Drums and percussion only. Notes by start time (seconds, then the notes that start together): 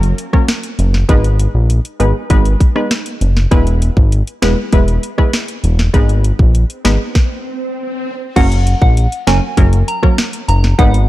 0.03 closed hi-hat
0.18 closed hi-hat
0.33 kick, cross-stick
0.48 snare, closed hi-hat
0.63 closed hi-hat
0.79 closed hi-hat
0.94 snare
1.09 kick, closed hi-hat
1.24 closed hi-hat
1.39 closed hi-hat
1.70 closed hi-hat
1.85 closed hi-hat
2.00 closed hi-hat
2.30 kick, closed hi-hat
2.45 closed hi-hat
2.60 kick, closed hi-hat
2.76 cross-stick
2.91 snare, closed hi-hat
3.06 closed hi-hat
3.21 closed hi-hat
3.37 snare
3.51 kick, closed hi-hat
3.67 closed hi-hat
3.82 closed hi-hat
3.97 kick
4.12 closed hi-hat
4.27 closed hi-hat
4.42 snare, closed hi-hat
4.72 kick, closed hi-hat
4.88 closed hi-hat
5.03 closed hi-hat
5.18 kick, cross-stick
5.33 snare, closed hi-hat
5.48 closed hi-hat
5.64 closed hi-hat
5.79 snare
5.94 kick, closed hi-hat
6.09 closed hi-hat
6.24 closed hi-hat
6.39 kick
6.55 closed hi-hat
6.70 closed hi-hat
6.85 snare, closed hi-hat
7.15 kick, snare
8.36 kick, closed hi-hat, crash
8.52 closed hi-hat
8.67 closed hi-hat
8.82 kick
8.97 closed hi-hat
9.12 closed hi-hat
9.27 snare, closed hi-hat
9.57 kick, closed hi-hat
9.73 closed hi-hat
9.88 closed hi-hat
10.03 kick, cross-stick
10.18 snare, closed hi-hat
10.33 closed hi-hat
10.49 closed hi-hat
10.64 snare
10.79 kick, closed hi-hat
10.94 closed hi-hat